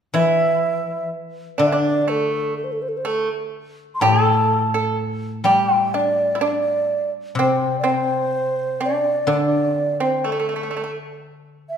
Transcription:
0.14 E3 E4 E5
1.58 D3 D4 D5
1.67 E5
1.72 D4 D5
2.08 A3 A4
2.57 A4
2.64 C5
2.72 A4
2.82 C5
2.89 A4
2.97 C5
3.05 A3 A4
3.95 C6
4.00 A2 G4 A5
4.23 A4
4.74 A4
5.44 G3 G4 G5
5.75 E4
5.94 D4 D5
6.35 E4
6.41 D4 D5
7.35 C3 C4
7.41 C5
7.79 D5
7.84 C4
7.88 C5
8.80 D4
8.86 D5
9.27 D3 D4
9.32 D5
9.72 C4
10.00 C4 C5
10.19 C5
10.24 A3 A4
10.32 A3
10.40 A3
10.49 A3
10.56 A3
10.63 A3
10.71 A3
10.77 A3
10.84 A3
11.69 E5

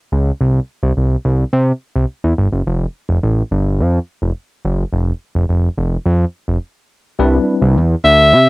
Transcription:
0.12 C#2
0.41 C2
0.83 C2
0.97 C2
1.25 C2
1.53 C3
1.96 C2
2.24 E2
2.38 G1
2.52 F#1
2.67 F1
3.09 F1
3.23 A1
3.51 G1
3.80 F2
4.22 F1
4.65 F#1
4.93 F1
5.35 F1
5.49 F1
5.78 F1
6.06 F2
6.48 F1
7.19 C2 G3 C4 D4 E4 B4
7.62 C2
7.76 E2
8.04 D2 E5
8.33 C3

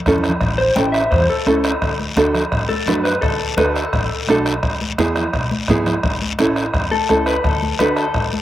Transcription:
0.06 E2 C#4 E4 A4, bombo low, bombo rim, low conga, short guiro
0.18 low conga
0.24 bombo rim, short guiro
0.29 low conga
0.41 A1, bombo low, bombo rim, high conga, long guiro
0.58 C5
0.76 A1 C#4 E4 A4 G5, bombo rim, high conga, short guiro
0.92 E5, bombo rim, short guiro
1.11 E2 C5, bombo low, bombo rim, high conga, long guiro
1.30 A4
1.46 C#2 C#4 E4 A4, bombo rim, high conga, short guiro
1.64 bombo rim, short guiro
1.82 D2, bombo low, bombo rim, high conga, long guiro
2.00 high conga
2.16 D2 D4 F#4 A4, bombo rim, high conga, short guiro
2.35 bombo rim, low conga, short guiro
2.52 A1, bombo low, bombo rim, high conga, long guiro
2.69 A4, high conga
2.86 F#2 D4 F#4 B4, bombo rim, high conga, low conga, short guiro
3.04 B4, bombo rim, short guiro
3.21 D2 A4, bombo low, bombo rim, high conga, long guiro
3.56 D2 D4 F#4 A4 B4, bombo rim, high conga, short guiro
3.74 A4, bombo rim, short guiro
3.93 A1, bombo low, bombo rim, high conga, long guiro
4.27 B1 D4 F#4 A4, bombo rim, high conga, short guiro
4.46 bombo rim, short guiro
4.63 E2, bombo low, bombo rim, high conga, long guiro
4.81 high conga
4.98 E2 B3 E4 G#4, bombo rim, high conga, short guiro
5.16 bombo rim, low conga, short guiro
5.33 B1, bombo low, bombo rim, high conga, long guiro
5.51 high conga
5.68 G#2 B3 E4 G#4, bombo low, bombo rim, low conga, short guiro
5.86 bombo rim, low conga, short guiro
6.03 A1, bombo low, bombo rim, high conga, long guiro
6.22 high conga
6.39 A1 C#4 E4 A4, bombo rim, high conga, short guiro
6.56 bombo rim, short guiro
6.74 E2, bombo low, bombo rim, high conga, long guiro
6.91 A4, high conga
7.09 C#2 C#4 E4 A4, bombo rim, high conga, short guiro
7.26 B4, bombo rim, short guiro
7.44 D2 A4, bombo low, bombo rim, high conga, long guiro
7.62 high conga
7.79 D2 D4 F#4 A4 B4, bombo rim, high conga, short guiro
7.95 A4, bombo rim, short guiro
8.14 A1, bombo low, bombo rim, high conga, long guiro
8.33 high conga

